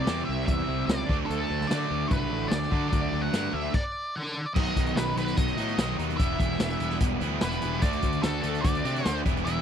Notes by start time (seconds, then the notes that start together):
Already playing: D5
0.04 E2 C3 G3 C4 E4, snare, closed hi-hat
0.25 C2 E5
0.46 E2 E5, kick, closed hi-hat
0.68 C2 C3 G3 C4 E4
0.86 C#2 D5, snare, closed hi-hat
1.08 D2 D3 F#3 A3 D4, kick
1.26 A4
1.30 D2, closed hi-hat
1.50 D2
1.61 snare
1.67 D3 F#3 A3 D5, snare, closed hi-hat
1.72 D4
1.91 D2
2.08 C2 B4, kick, closed hi-hat
2.31 A1 D3 F#3 A3 D4
2.48 D2 D5, snare, closed hi-hat
2.62 snare
2.71 D3 F#3 A3 D4, kick
2.89 D2 D5, kick, closed hi-hat
3.13 D2
3.22 F#5
3.33 G2 D3 F#3 A3 D4, snare, closed hi-hat
3.53 D2 E5
3.74 D5, kick, crash
4.16 D5 F#5
4.54 B1 B2 D#3 F#3 B3 D#5, kick, crash
4.59 D#4
4.66 closed hi-hat
4.76 B1, kick, closed hi-hat
4.86 closed hi-hat
4.96 B1 D#3 F#3 B3 D#4 B4, snare, closed hi-hat
5.16 B1 B3 D#4 B4, snare, closed hi-hat
5.20 F#3
5.27 snare, closed hi-hat
5.37 B1 D#5, kick, closed hi-hat
5.48 closed hi-hat
5.57 A2 F#3 B3 D#4, closed hi-hat
5.68 closed hi-hat
5.77 B1 B2 D#3 F#3 B3 D#4, snare, closed hi-hat
5.98 D#2 F#3 B3 D#4, closed hi-hat
6.10 closed hi-hat
6.17 E1 E3 G3 B3 E4 E5, kick, closed hi-hat
6.39 E1, kick, closed hi-hat
6.59 E1 E3 G3 B3 E4, snare, closed hi-hat
6.70 closed hi-hat
6.80 E1 B3 E4, closed hi-hat
6.84 G3
6.90 snare
7.00 E1, kick, closed hi-hat
7.21 D2 G3 B3 E4, closed hi-hat
7.41 E1 E3 G3 B3 E4 B4, snare, closed hi-hat
7.52 closed hi-hat
7.61 E1 G3 B3 E4, closed hi-hat
7.80 D2 D3 A3 D4 F#4 D5, kick, closed hi-hat
7.93 closed hi-hat
8.02 D2, kick, closed hi-hat
8.12 closed hi-hat
8.22 D2 D3 A3 D4 F#4 A4, snare, closed hi-hat
8.41 D2 D4 F#4 A4, closed hi-hat
8.46 A3
8.54 closed hi-hat
8.61 D2 D5, kick, closed hi-hat
8.75 closed hi-hat
8.84 C3 A3 D4 F#4, closed hi-hat
8.96 closed hi-hat
9.05 D2 D3 A3 D4 F#4 C5, snare, closed hi-hat
9.25 E1 E3 G3 B3 E4, kick, closed hi-hat
9.37 closed hi-hat
9.45 E1 E3 G3 B3 E4 E5, closed hi-hat